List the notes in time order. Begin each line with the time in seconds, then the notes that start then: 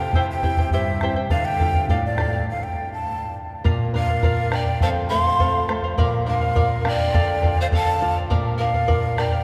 Already playing: C3 G5
0.00 C5 F5
0.13 C3 E4 G4 C5 E5 G5, bombo low
0.31 G5
0.43 C4 E4 G4 C5 E5 G5, bombo low
0.57 E4 C5 G5, bombo low
0.71 G2 E4 G4 C5 E5 G5, bombo low
1.01 C4 E4 G4 C5 E5 G5, bombo rim
1.16 E4 C5 G5
1.30 D3 A4 D5 F5, bombo low
1.45 G5
1.59 D4 F4 A4 D5 F5, bombo low
1.74 D5 F5, bombo low
1.88 A2 A4 D5 F5, bombo low
2.06 D5
2.18 D4 F4 A4 D5 F5, bombo rim
2.33 D5 F5
2.50 F5
2.63 G5
2.93 A5
3.64 A#2 A#4 D5 F5, bombo low
3.94 D4 A#4 D5 F5
4.08 D5 F5
4.22 F4 A#4 D5 F5, bombo low
4.52 D4 A#4 D5 F5 G5, bombo rim
4.68 D5 F5
4.81 F2 A4 C5 F5 A5, bombo low
5.10 A3 A4 C5 F5 C6
5.25 C5 F5
5.40 C4 A4 C5 F5, bombo low
5.68 A3 A4 C5 F5, bombo rim
5.84 C5 F5
5.98 A#2 A#4 D5 F5, bombo low
6.26 D4 A#4 D5 F5
6.41 D5 F5
6.55 F4 A#4 D5 F5, bombo low
6.84 D4 A#4 D5 F5, bombo rim
6.89 G5
6.98 D5 F5
7.13 D3 A4 D5 F5, bombo low
7.42 F4 A4 D5 F5, bombo low
7.57 C5 D5 F5
7.62 F5
7.72 A4 D5 F5, bombo low
7.77 A5
8.01 F4 A4 D5 F5
8.16 D5 F5
8.30 A#2 A#4 D5 F5, bombo low
8.58 D4 A#4 D5 F5
8.75 D5 F5
8.88 F4 A#4 D5 F5, bombo low
9.17 D4 A#4 D5 F5 G5, bombo rim
9.32 D5 F5